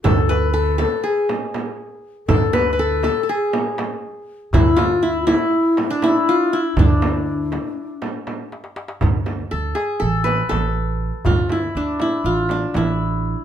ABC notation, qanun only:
X:1
M:9/8
L:1/16
Q:3/8=80
K:none
V:1 name="Qanun"
A2 B2 A2 A2 ^G2 z8 | A2 B3/2 B/2 A2 A3/2 A/2 ^G2 z8 | E2 F2 E2 E4- E D E2 F2 E2 | D12- D2 z4 |
z4 A2 ^G2 A2 B2 A6 | F2 E2 D2 E2 F2 D2 E6 |]